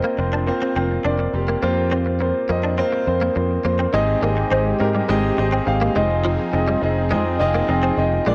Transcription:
Already playing: A#3 C4 F4 C5 D#5
0.04 A#3
0.18 F1 A#3 C4 F4 C5, muted clean electric guitar stroke
0.33 D4
0.47 A#3 C4 F4 C5, muted clean electric guitar stroke
0.62 C4
0.76 F1 A#3 C4 F4 C5
1.05 F1 A#3 C4 D4 F4 D5
1.19 muted clean electric guitar stroke
1.33 F1 A#3 C4 F4 G4
1.48 A#3
1.63 F2 A#3 C4 F4 C5
1.91 A#3 C4 F4 C5
2.06 muted clean electric guitar stroke
2.20 A#3 C4 F4 C5, muted clean electric guitar stroke
2.49 F2 A#3 C4 F4 D#5
2.64 D4
2.78 A#3 C4 F4 C5
2.93 muted clean electric guitar stroke
3.06 F2 A#3 C4 F4 C5
3.21 A#3
3.35 F2 A#3 C4 F4 C5, muted clean electric guitar stroke
3.64 F2 A#3 C4 F4 C5
3.79 C4
3.93 G#1 G#2 G#3 C4 D#4 G4 G#4 D#5
4.22 G#1 A#3 C4 D#4 G4 G#4 D#5
4.37 muted clean electric guitar stroke
4.50 G#1 C4 D#4 G4 G#4 D#5
4.79 G#2 C4 D#4 G4 G#4 A#4, muted clean electric guitar stroke
4.95 G3
5.08 G#1 G#3 C4 D#4 G4 G#4 D#5
5.38 G#1 C4 D#4 G4 G#4 D#5, muted clean electric guitar stroke
5.52 C4
5.66 G#1 C4 D#4 G4 G#4 F5, muted clean electric guitar stroke
5.81 A#3
5.95 F1 F3 G#3 C4 D#4 F4 G#4 D#5
6.25 F3
6.53 F1 C4 D#4 F4 G#4 D#5, muted clean electric guitar stroke
6.68 G3
6.82 F1 C4 D#4 F4 G#4 D#5
7.11 F2 G#3 C4 D#4 F4 G#4 D#5
7.39 F1 C4 D#4 F4 G#4 D#5
7.54 A#3
7.68 F1 C4 D#4 F4 G#4 D#5, muted clean electric guitar stroke
7.83 C4
7.97 F1 C4 D#4 F4 G#4 D#5 G5
8.26 A#1 A#2 G#3 A#3 D4 F4 G#4 D5 G#5

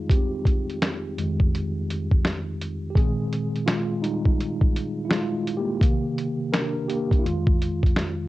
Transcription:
Already playing: G3 G#3 D#4 F4
0.10 C4 G4, kick, closed hi-hat
0.45 kick, closed hi-hat
0.70 closed hi-hat
0.82 finger snap, snare, closed hi-hat
1.17 F2 D#3 G#3, closed hi-hat
1.40 kick
1.55 closed hi-hat
1.91 closed hi-hat
2.12 kick
2.25 finger snap, snare, closed hi-hat
2.62 closed hi-hat
2.90 G4
2.95 A#2 D#3 G#3 C4 G#4, kick, closed hi-hat
3.33 closed hi-hat
3.56 closed hi-hat
3.66 G#3 F4, finger snap, snare, closed hi-hat
4.02 G3 D#4, closed hi-hat
4.25 kick
4.40 closed hi-hat
4.61 kick
4.76 closed hi-hat
5.05 E4
5.09 G#3 F4, finger snap, snare, closed hi-hat
5.47 closed hi-hat
5.57 A#3 G4
5.81 C3 D#3 A#3, kick, closed hi-hat
6.18 closed hi-hat
6.53 D4 A#4, finger snap, snare, closed hi-hat
6.88 A#3 G4, closed hi-hat
7.11 kick, closed hi-hat
7.19 E4
7.24 F2 D#3 G#3 F4, closed hi-hat
7.47 kick
7.62 closed hi-hat
7.83 kick, closed hi-hat
7.96 finger snap, snare, closed hi-hat

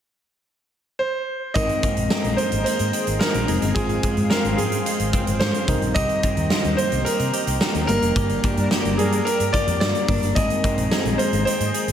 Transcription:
0.99 C5
1.54 G#1 D#3 G#3 C4 D#4 G#4 A#4 C5 D#5 A#5, kick, closed hi-hat
1.69 closed hi-hat
1.83 A#3, kick, closed hi-hat
1.97 A#1, closed hi-hat
2.10 C4, snare
2.24 A#1, closed hi-hat
2.37 D#3 C5, closed hi-hat
2.52 G#1, closed hi-hat
2.64 A#3 C5, muted fingered electric bass stroke, closed hi-hat
2.79 G#2, closed hi-hat
2.93 C4, closed hi-hat
3.07 G#1, closed hi-hat
3.19 D#3 A#4, snare
3.34 A#1, closed hi-hat
3.48 F1 G#3 C4 D#4 A#4, closed hi-hat
3.62 G1 A#3, closed hi-hat
3.75 G#1 F3 G#3 C4 F4 G#4 C5 F5 C6, kick, closed hi-hat
3.89 closed hi-hat
4.03 G#3, kick, closed hi-hat
4.17 G#2, closed hi-hat
4.30 C4 A#4, snare
4.45 G#1, closed hi-hat
4.57 G#2 F3 G#4, closed hi-hat
4.72 closed hi-hat
4.86 G#3, closed hi-hat
5.00 G#1, closed hi-hat
5.13 C4, kick, closed hi-hat
5.27 G#1, closed hi-hat
5.39 G#2 F3 C5, snare
5.54 closed hi-hat
5.68 C2 D#3 G3 C4 D#4 G4 A#4 D#5 A#5, kick, closed hi-hat
5.82 A#1, closed hi-hat
5.94 C2 D#3 G4 D#5, kick, closed hi-hat
6.09 closed hi-hat
6.23 C4, kick, closed hi-hat
6.37 D#2, closed hi-hat
6.50 F4, snare
6.64 D#2 G4, closed hi-hat
6.77 A#3 C5, closed hi-hat
6.92 C2, closed hi-hat
7.05 C4 A#4, muted fingered electric bass stroke, closed hi-hat
7.19 C3, closed hi-hat
7.33 G4, closed hi-hat
7.47 C2, closed hi-hat
7.61 A#3, snare
7.75 D#2, closed hi-hat
7.87 G1 G3 A#3 D4 A#4 D5, closed hi-hat
8.02 F1, closed hi-hat
8.16 G1 A#3 G4, kick, closed hi-hat
8.29 closed hi-hat
8.43 D4, kick, closed hi-hat
8.57 G2 G3 D4 A#4, closed hi-hat
8.71 G4, snare
8.85 G1, closed hi-hat
8.97 G2 G3 A#3 D4 G#4 A#4, closed hi-hat
9.12 closed hi-hat
9.25 D4 A#4, closed hi-hat
9.40 G2, closed hi-hat
9.53 F4 D5, kick, closed hi-hat
9.67 F2 G4, closed hi-hat
9.80 G2 A#3 D5, snare
9.95 closed hi-hat
10.08 G1 G3 A#3 D4 A#4, kick, open hi-hat
10.22 G1, closed hi-hat
10.35 G#1 D#3 G#3 C4 D#4 G#4 A#4 C5 D#5, kick, closed hi-hat
10.50 closed hi-hat
10.64 C4, kick, closed hi-hat
10.78 A#1, closed hi-hat
10.91 G#4, snare
11.05 A#1, closed hi-hat
11.18 A#3 C5, closed hi-hat
11.33 G#1, closed hi-hat
11.45 C4 C5, closed hi-hat
11.60 G#2, closed hi-hat
11.74 G#4, closed hi-hat
11.88 G#1, closed hi-hat

